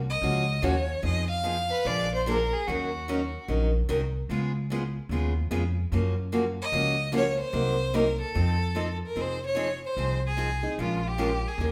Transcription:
0.00 0.16 C2 medium
0.10 0.66 D#5 medium
0.22 0.57 C#2 medium
0.22 0.44 C#3 medium
0.22 0.44 F3 medium
0.22 0.44 A#3 medium
0.22 0.44 C#4 medium
0.22 0.44 F#4 medium
0.62 0.97 D#2 medium
0.62 0.74 C#3 medium
0.62 0.74 F3 medium
0.62 0.74 A#3 medium
0.62 0.74 C#4 medium
0.62 0.75 F#4 loud
0.62 1.04 C#5 medium
1.02 1.69 F2 medium
1.02 1.24 F3 medium
1.02 1.25 B3 medium
1.02 1.25 D#4 medium
1.02 1.25 G#4 medium
1.02 1.28 D#5 medium
1.30 2.07 F5 medium
1.44 1.55 F3 medium
1.44 1.56 B3 medium
1.44 1.56 D#4 medium
1.44 1.56 G#4 medium
1.70 1.88 B4 medium
1.85 2.50 A#1 medium
1.85 2.06 D3 medium
1.85 2.06 F3 medium
1.85 2.07 A#3 medium
1.85 2.07 D4 medium
1.85 2.07 G#4 medium
1.85 2.13 D5 loud
2.14 2.26 C5 medium
2.26 2.37 D3 medium
2.26 2.38 F3 medium
2.26 2.38 A#3 medium
2.26 2.38 D4 medium
2.26 2.38 G#4 loud
2.26 2.54 A#4 medium
2.53 2.69 G#4 medium
2.67 3.33 D#2 medium
2.67 2.89 D#3 medium
2.67 2.89 F#3 medium
2.67 2.89 C#4 medium
2.67 2.89 D#4 medium
2.67 3.48 F#4 medium
2.67 2.89 A#4 medium
3.08 3.19 D#3 medium
3.08 3.19 F#3 medium
3.08 3.20 C#4 medium
3.08 3.20 D#4 medium
3.08 3.20 A#4 medium
3.48 3.83 A#1 medium
3.48 3.69 D#3 medium
3.48 3.69 F#3 medium
3.48 3.70 C#4 medium
3.48 3.70 D#4 medium
3.48 3.70 A#4 medium
3.89 4.24 C2 medium
3.89 4.00 D#3 medium
3.89 4.00 F#3 medium
3.89 4.00 C#4 medium
3.89 4.01 D#4 medium
3.89 4.01 A#4 medium
4.29 4.94 C#2 medium
4.29 4.51 C#3 medium
4.29 4.51 G#3 medium
4.29 4.51 B3 medium
4.29 4.51 F4 medium
4.29 4.51 G#4 medium
4.70 4.81 C#3 medium
4.70 4.82 G#3 medium
4.70 4.82 B3 medium
4.70 4.82 F4 medium
4.70 4.82 G#4 medium
5.09 5.44 D#2 medium
5.09 5.32 C#3 medium
5.09 5.32 G#3 medium
5.09 5.33 B3 medium
5.09 5.32 F4 medium
5.09 5.33 G#4 medium
5.51 5.85 F2 medium
5.51 5.62 C#3 medium
5.51 5.62 G#3 medium
5.51 5.62 B3 medium
5.51 5.63 F4 loud
5.51 5.63 G#4 medium
5.92 6.57 F#2 medium
5.92 6.13 C#3 medium
5.92 6.13 F3 medium
5.92 6.14 A#3 medium
5.92 6.14 C#4 medium
5.92 6.14 F#4 medium
6.32 6.43 C#3 medium
6.32 6.44 F3 medium
6.32 6.44 A#3 medium
6.32 6.44 C#4 medium
6.32 6.44 F#4 medium
6.62 7.12 D#5 loud
6.72 7.37 C#2 medium
6.72 6.94 C#3 medium
6.72 6.94 F3 medium
6.72 6.94 A#3 medium
6.72 6.94 C#4 medium
6.72 6.94 F#4 medium
7.12 7.24 C#3 medium
7.12 7.24 F3 medium
7.12 7.24 A#3 loud
7.12 7.25 C#4 medium
7.12 7.25 F#4 medium
7.17 7.39 C#5 medium
7.40 7.97 C5 loud
7.52 8.19 C2 medium
7.52 7.74 C3 medium
7.52 7.74 F#3 medium
7.52 7.75 A#3 medium
7.52 7.75 D#4 medium
7.52 7.75 A#4 medium
7.93 8.05 C3 medium
7.93 8.05 F#3 medium
7.93 8.06 A#3 medium
7.93 8.06 D#4 medium
7.93 8.06 A#4 medium
7.93 8.20 A#4 medium
8.20 8.97 A4 medium
8.35 9.00 F2 medium
8.35 8.56 F3 medium
8.35 8.56 C4 medium
8.35 8.56 D#4 medium
8.35 8.57 A4 medium
8.75 8.86 F3 medium
8.75 8.87 C4 medium
8.75 8.87 D#4 medium
8.75 8.87 A4 medium
9.07 9.22 A#4 medium
9.16 9.81 F1 medium
9.16 9.37 F3 medium
9.16 9.37 C4 medium
9.16 9.38 D#4 medium
9.16 9.38 G#4 medium
9.21 9.44 C5 medium
9.46 9.82 C#5 medium
9.55 9.67 F3 medium
9.55 9.68 C4 medium
9.55 9.68 D#4 medium
9.55 9.68 G#4 medium
9.86 10.22 C5 medium
9.97 10.62 C2 medium
9.97 10.18 F3 medium
9.97 10.19 C4 medium
9.97 10.19 D#4 medium
9.97 10.19 G#4 medium
10.27 10.77 G#4 medium
10.37 10.48 F3 medium
10.37 10.49 C4 medium
10.37 10.49 D#4 medium
10.37 10.49 G#4 medium
10.63 10.79 C4 soft
10.63 10.78 D#4 soft
10.63 10.78 G#4 medium
10.78 11.43 A#1 medium
10.78 11.00 F3 medium
10.78 11.00 G#3 medium
10.78 11.00 C#4 medium
10.78 11.00 F4 medium
10.78 11.09 F4 medium
10.78 11.00 A#4 medium
11.07 11.49 G4 medium
11.18 11.30 F3 medium
11.18 11.30 G#3 medium
11.18 11.30 C#4 medium
11.18 11.30 F4 medium
11.18 11.30 A#4 medium
11.48 11.65 G#4 medium
11.58 11.72 D#2 medium
11.58 11.72 D#3 soft
11.58 11.72 A#3 medium
11.58 11.72 C#4 medium
11.58 11.72 G4 medium
11.58 11.72 A#4 medium
11.64 11.72 A#4 medium

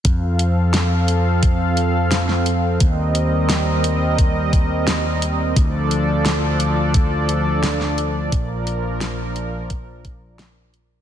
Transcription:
0.05 2.77 F2 medium
0.05 2.78 F3 medium
0.05 5.52 C4 medium
0.05 2.78 A4 medium
0.05 2.78 F5 medium
0.05 kick loud
0.05 closed hi-hat medium
0.39 closed hi-hat medium
0.74 snare loud
0.74 closed hi-hat loud
1.08 closed hi-hat medium
1.43 kick loud
1.43 closed hi-hat medium
1.77 closed hi-hat medium
2.12 snare loud
2.12 closed hi-hat medium
2.29 snare soft
2.46 closed hi-hat medium
2.80 5.53 D#2 medium
2.80 5.54 G3 medium
2.80 5.54 A#4 medium
2.80 5.54 D#5 medium
2.80 kick loud
2.80 closed hi-hat loud
3.15 closed hi-hat medium
3.49 snare loud
3.49 closed hi-hat loud
3.84 closed hi-hat medium
4.18 kick loud
4.18 closed hi-hat medium
4.53 kick loud
4.53 closed hi-hat medium
4.88 snare loud
4.88 closed hi-hat loud
5.22 closed hi-hat medium
5.56 8.29 D2 medium
5.56 8.30 F3 medium
5.56 11.02 D4 medium
5.56 8.30 A4 medium
5.56 11.02 D5 medium
5.56 kick loud
5.56 closed hi-hat medium
5.91 closed hi-hat medium
6.25 snare loud
6.25 closed hi-hat medium
6.60 closed hi-hat medium
6.94 kick loud
6.94 closed hi-hat medium
7.29 closed hi-hat medium
7.63 snare loud
7.63 closed hi-hat medium
7.81 snare soft
7.98 closed hi-hat medium
8.32 11.02 A#1 medium
8.32 11.02 F3 medium
8.32 11.02 A#4 medium
8.32 kick loud
8.32 closed hi-hat medium
8.67 closed hi-hat medium
9.01 snare loud
9.01 closed hi-hat medium
9.36 closed hi-hat medium
9.70 kick loud
9.70 closed hi-hat medium
10.05 kick loud
10.05 closed hi-hat medium
10.39 snare loud
10.39 closed hi-hat medium
10.74 closed hi-hat medium

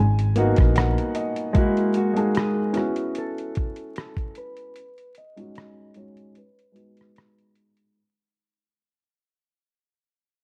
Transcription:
0.00 0.51 G#1 loud
0.00 0.33 G#5 medium
0.19 closed hi-hat soft
0.36 1.17 A#3 medium
0.36 1.17 B3 medium
0.36 1.18 D#4 medium
0.36 1.18 F#4 medium
0.36 0.73 F#5 medium
0.36 closed hi-hat medium
0.56 0.94 A#1 medium
0.56 kick medium
0.56 closed hi-hat soft
0.60 cross-stick soft
0.76 1.13 F#5 medium
0.76 cross-stick medium
0.76 closed hi-hat medium
0.98 closed hi-hat soft
1.15 1.52 D#5 medium
1.15 closed hi-hat medium
1.36 closed hi-hat soft
1.53 1.95 G#3 loud
1.53 1.95 A#3 loud
1.53 1.97 F#4 loud
1.53 1.96 D#5 medium
1.53 kick loud
1.53 closed hi-hat medium
1.57 1.97 E4 medium
1.77 closed hi-hat soft
1.94 2.37 F#4 medium
1.94 closed hi-hat medium
2.14 2.56 G#3 medium
2.14 2.57 A#3 medium
2.14 2.57 D#4 medium
2.14 2.58 G#4 medium
2.14 closed hi-hat soft
2.35 3.18 G#4 medium
2.35 cross-stick loud
2.35 closed hi-hat medium
2.72 4.03 B3 medium
2.72 4.03 C#4 medium
2.72 4.04 E4 medium
2.72 4.05 F#4 medium
2.72 closed hi-hat medium
2.77 cross-stick soft
2.96 closed hi-hat soft
3.15 3.97 A4 medium
3.15 closed hi-hat medium
3.38 closed hi-hat soft
3.55 kick medium
3.55 closed hi-hat medium
3.76 closed hi-hat soft
3.96 4.38 A4 medium
3.96 cross-stick loud
3.96 closed hi-hat medium
4.17 kick medium
4.17 closed hi-hat soft
4.35 5.17 B4 medium
4.35 closed hi-hat medium
4.57 closed hi-hat soft
4.76 closed hi-hat medium
4.98 closed hi-hat soft
5.15 5.97 D#5 medium
5.15 closed hi-hat medium
5.36 5.77 G#3 medium
5.36 5.78 C#4 medium
5.36 5.79 D#4 medium
5.36 5.79 F#4 medium
5.36 closed hi-hat soft
5.55 cross-stick loud
5.55 closed hi-hat medium
5.94 6.35 G#3 medium
5.94 6.36 C#4 medium
5.94 6.37 D#4 medium
5.94 6.37 C#5 medium
5.94 closed hi-hat medium
5.99 6.37 F#4 medium
6.17 closed hi-hat soft
6.35 7.52 B4 medium
6.35 closed hi-hat medium
6.59 closed hi-hat soft
6.72 7.55 G#3 medium
6.72 7.56 B3 medium
6.72 7.56 D#4 medium
6.72 7.57 F#4 medium
6.72 closed hi-hat medium
6.97 closed hi-hat soft
7.01 cross-stick soft
7.16 cross-stick loud
7.16 closed hi-hat medium
7.39 closed hi-hat soft
7.55 closed hi-hat medium
7.77 closed hi-hat soft

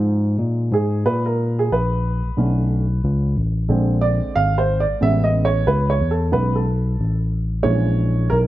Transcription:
0.00 0.36 G#2 loud
0.00 2.33 F3 medium
0.00 2.33 G#3 soft
0.00 2.34 D#4 medium
0.39 0.70 A#2 medium
0.72 1.03 G#2 medium
0.72 1.04 G#4 medium
1.06 1.68 A#2 medium
1.06 1.24 B4 loud
1.26 1.59 A#4 medium
1.59 1.71 G#4 medium
1.72 2.22 A#1 medium
1.72 3.33 B4 medium
2.25 2.30 A#1 soft
2.37 3.00 B1 loud
2.37 2.83 D3 medium
2.37 2.84 A3 soft
2.37 2.84 C#4 medium
3.04 3.35 C#2 medium
3.36 3.68 A1 medium
3.69 4.20 A#1 loud
3.69 4.97 D3 medium
3.69 4.97 G#3 medium
3.69 4.97 C4 medium
4.01 4.32 D5 loud
4.36 4.86 G#1 medium
4.36 4.58 F5 loud
4.58 4.80 C5 medium
4.80 5.02 D5 medium
4.89 4.94 G#1 soft
5.01 5.64 A1 loud
5.01 5.96 C#3 medium
5.01 5.96 G#3 soft
5.01 5.96 B3 medium
5.01 5.24 E5 loud
5.24 5.46 D#5 medium
5.45 5.68 C#5 medium
5.67 5.98 C#2 loud
5.67 5.90 B4 medium
5.90 6.12 C#5 medium
6.01 6.32 E2 medium
6.11 6.33 A4 medium
6.32 6.96 B1 loud
6.32 6.62 C#3 medium
6.32 6.62 G#3 medium
6.32 6.62 B3 medium
6.32 6.56 B4 loud
6.55 7.17 A4 medium
6.99 7.62 A1 medium
7.63 8.28 A#1 loud
7.63 8.47 E3 medium
7.63 8.47 G#3 soft
7.63 8.47 C#4 medium
7.63 8.32 C#5 medium
8.30 8.47 B1 loud
8.30 8.37 A#4 loud

